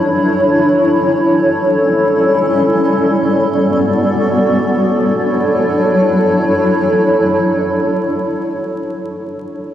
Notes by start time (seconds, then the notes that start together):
Already playing: F#3 D4 E4 A4 C#5
1.39 G3 C#4 E4 A4
3.07 B3 F#4 D5
4.75 F#3 D4 E4 A4 C#5